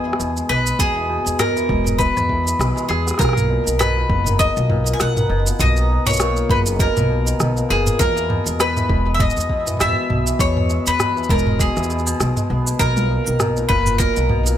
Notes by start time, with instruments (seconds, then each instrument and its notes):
Already playing: upright bass E2, hammered dulcimer B2 G#3, mandolin G#4
0.06 hammered dulcimer E3
0.13 cross-stick
0.19 upright bass E2, hammered dulcimer B2, shaker
0.36 hammered dulcimer G#3, shaker
0.49 upright bass B1, hammered dulcimer G#3, mandolin B4
0.67 shaker
0.79 upright bass E2, hammered dulcimer B2, mandolin G#4, kick, shaker
0.96 hammered dulcimer E3
1.09 hammered dulcimer B2
1.26 upright bass E2, hammered dulcimer G#3, shaker
1.39 hammered dulcimer B2, mandolin A#4, cross-stick, mid tom, shaker
1.56 hammered dulcimer E3, shaker
1.69 upright bass E1, hammered dulcimer B2, kick
1.86 hammered dulcimer G#3, mid tom, shaker
1.99 hammered dulcimer G#3, mandolin B4, kick, shaker
2.17 upright bass E2, cross-stick, mid tom, shaker
2.29 hammered dulcimer E3, kick
2.45 hammered dulcimer E3, shaker
2.59 upright bass B1, hammered dulcimer G#3, cross-stick, shaker
2.76 hammered dulcimer G#3, shaker
2.88 upright bass E2, hammered dulcimer G#4, mandolin G#4, cross-stick
3.06 hammered dulcimer B3, cross-stick, shaker
3.11 cross-stick
3.14 cross-stick
3.18 upright bass B1, hammered dulcimer A#2, mandolin A#4, kick, cross-stick
3.21 cross-stick, shaker
3.25 cross-stick
3.29 cross-stick
3.33 cross-stick
3.37 mid tom, shaker
3.49 hammered dulcimer B2
3.66 upright bass B1, hammered dulcimer D#3, shaker
3.79 hammered dulcimer B2, mandolin B4, cross-stick, mid tom, shaker
3.96 hammered dulcimer A#2
4.09 upright bass F#1, hammered dulcimer B2, kick
4.26 hammered dulcimer D#3, mid tom, shaker
4.39 hammered dulcimer B2, mandolin D#5, kick, shaker
4.56 upright bass B1, hammered dulcimer A#2, shaker
4.70 hammered dulcimer A#2, kick, mid tom
4.87 shaker
4.93 mandolin G#5
4.99 upright bass B1, hammered dulcimer B2, mandolin F#5, cross-stick, shaker
5.16 hammered dulcimer D#3, mid tom, shaker
5.29 upright bass F#1, hammered dulcimer B2
5.46 hammered dulcimer A#2, shaker
5.59 upright bass B1, hammered dulcimer B2, mandolin D#5, kick, mid tom, shaker
5.76 hammered dulcimer D#3, shaker
5.90 hammered dulcimer B2
6.06 upright bass B1, hammered dulcimer A#2, mandolin C#5, mid tom, shaker
6.10 shaker
6.13 shaker
6.16 hammered dulcimer A#2, cross-stick, shaker
6.20 shaker
6.37 shaker
6.49 upright bass F#1, hammered dulcimer B2, mandolin B4, kick, mid tom
6.66 hammered dulcimer D#3, shaker
6.79 hammered dulcimer B2, mandolin A#4, kick, shaker
6.96 upright bass B1, hammered dulcimer A#2, mid tom, shaker
7.09 hammered dulcimer B2
7.26 hammered dulcimer D#3, shaker
7.39 upright bass B1, hammered dulcimer B2, cross-stick, mid tom, shaker
7.56 hammered dulcimer A#2, shaker
7.69 upright bass F#1, hammered dulcimer A#2, mandolin G#4
7.87 mid tom, shaker
7.99 upright bass E2, hammered dulcimer B2, mandolin A#4, kick, shaker
8.16 hammered dulcimer E3, shaker
8.29 hammered dulcimer B2, mid tom
8.46 upright bass E2, hammered dulcimer G#3, shaker
8.59 hammered dulcimer B2, mandolin B4, cross-stick, shaker
8.76 hammered dulcimer E3, mid tom, shaker
8.89 upright bass E1, hammered dulcimer B2, kick
9.06 hammered dulcimer G#3
9.14 mandolin E5
9.19 hammered dulcimer G#3, mandolin D#5, kick, mid tom, shaker
9.30 shaker
9.37 upright bass E2, shaker
9.40 shaker
9.49 hammered dulcimer B2, kick
9.66 hammered dulcimer E3, mid tom, shaker
9.71 mid tom
9.74 mid tom
9.77 hammered dulcimer B2, cross-stick, mid tom
9.80 upright bass E2, mandolin E5, mid tom, shaker
9.85 mid tom
9.88 mid tom
9.93 hammered dulcimer G#3, mid tom
10.09 upright bass B1, hammered dulcimer B2, mid tom
10.26 hammered dulcimer E3, shaker
10.39 upright bass E2, hammered dulcimer B2, mandolin C#5, kick, shaker
10.57 hammered dulcimer G#3, mid tom
10.69 hammered dulcimer G#3, shaker
10.87 upright bass E2, mandolin B4, shaker
10.99 hammered dulcimer B2, cross-stick, mid tom, shaker
11.16 hammered dulcimer E3, shaker
11.23 shaker
11.29 upright bass E1, hammered dulcimer B2, mandolin A#4, kick, shaker
11.39 shaker
11.46 hammered dulcimer G#3, mid tom
11.59 hammered dulcimer B2, mandolin G#4, kick, shaker
11.76 upright bass E2, hammered dulcimer E3, cross-stick, shaker
11.80 cross-stick, shaker
11.85 cross-stick
11.90 hammered dulcimer B2, cross-stick, shaker
11.96 cross-stick, shaker
12.00 cross-stick
12.06 hammered dulcimer B2, shaker
12.19 upright bass B1, hammered dulcimer G#3, cross-stick, shaker
12.36 hammered dulcimer G#3, mid tom, shaker
12.50 upright bass B1, hammered dulcimer B3
12.66 hammered dulcimer B2, shaker
12.79 upright bass B1, hammered dulcimer B2, mandolin A#4, kick, shaker
12.96 hammered dulcimer A#2, mid tom, shaker
13.10 hammered dulcimer B2
13.26 upright bass B1, hammered dulcimer D#3, shaker
13.40 hammered dulcimer B2, cross-stick, mid tom, shaker
13.56 hammered dulcimer A#2, shaker
13.69 upright bass F#1, hammered dulcimer A#2, mandolin B4, kick
13.86 mid tom, shaker
13.98 hammered dulcimer B2, mandolin A#4, kick, shaker
14.16 upright bass B1, hammered dulcimer D#3, shaker
14.29 hammered dulcimer B2, kick, mid tom
14.46 hammered dulcimer A#2, shaker